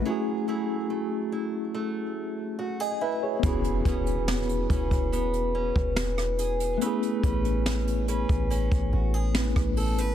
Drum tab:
HH |----------------|xxxxxxxxxx--xxxx|xxxxxxxxxx--xxox|
SD |----------------|----o-------or--|----o-------or--|
BD |----------------|o-o---oo---o----|--o----o-o---o--|